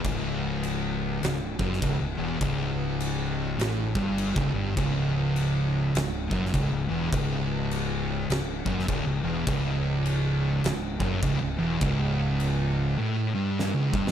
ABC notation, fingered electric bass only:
X:1
M:4/4
L:1/16
Q:"Swing" 1/4=102
K:C#m
V:1 name="Fingered electric bass" clef=bass
C,,,8 C,,,2 F,,,2 C,,, C,,, E,,,2 | C,,,8 A,,,2 =G,,,3 C,,, G,,,2 | C,,,8 C,,,2 F,,,2 C,,, C,,, E,,,2 | C,,,8 C,,,2 F,,,2 C,,, C,,, E,,,2 |
C,,,8 C,,,2 F,,,2 C,,, C,,, E,,,2 | C,,,8 z8 |]